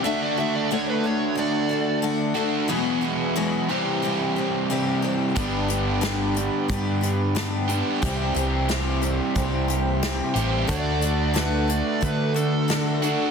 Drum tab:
HH |--------|--------|xxxxxxxx|xxxxxxxx|
SD |--------|--------|--o---o-|--o---o-|
BD |--------|--------|o---o---|o---o---|

HH |xxxxxxxx|
SD |--o---o-|
BD |o---o---|